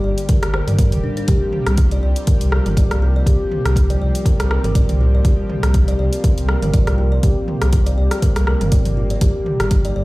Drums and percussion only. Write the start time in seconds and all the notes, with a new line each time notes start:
0.18 closed hi-hat
0.29 kick, closed hi-hat
0.43 cross-stick, closed hi-hat
0.54 cross-stick
0.68 closed hi-hat, mid tom
0.79 kick, closed hi-hat
0.92 closed hi-hat, mid tom
1.17 closed hi-hat
1.28 kick, closed hi-hat
1.53 mid tom
1.67 cross-stick, closed hi-hat
1.77 kick, closed hi-hat
1.91 closed hi-hat
2.16 closed hi-hat
2.27 kick, closed hi-hat
2.41 closed hi-hat
2.52 cross-stick
2.66 closed hi-hat, mid tom
2.77 kick, closed hi-hat
2.91 cross-stick, closed hi-hat
3.26 kick, closed hi-hat
3.52 mid tom
3.65 cross-stick, closed hi-hat
3.76 kick, closed hi-hat
3.90 closed hi-hat
4.15 closed hi-hat
4.26 kick, closed hi-hat
4.40 cross-stick, closed hi-hat
4.51 cross-stick
4.64 closed hi-hat, mid tom
4.75 kick, closed hi-hat
4.89 closed hi-hat, mid tom
5.25 kick, closed hi-hat
5.49 mid tom
5.63 cross-stick, closed hi-hat
5.74 kick, closed hi-hat
5.88 closed hi-hat
6.13 closed hi-hat
6.24 kick, closed hi-hat
6.38 closed hi-hat
6.49 cross-stick
6.62 closed hi-hat, mid tom
6.74 kick, closed hi-hat
6.87 cross-stick, closed hi-hat
7.23 kick, closed hi-hat
7.48 mid tom
7.62 cross-stick, closed hi-hat
7.73 kick, closed hi-hat
7.87 closed hi-hat
8.11 cross-stick, closed hi-hat
8.22 kick, closed hi-hat
8.36 cross-stick, closed hi-hat
8.47 cross-stick
8.61 closed hi-hat, mid tom
8.72 kick, closed hi-hat
8.85 closed hi-hat, mid tom
9.10 closed hi-hat
9.21 kick, closed hi-hat
9.46 mid tom
9.60 cross-stick, closed hi-hat
9.71 kick, closed hi-hat
9.85 closed hi-hat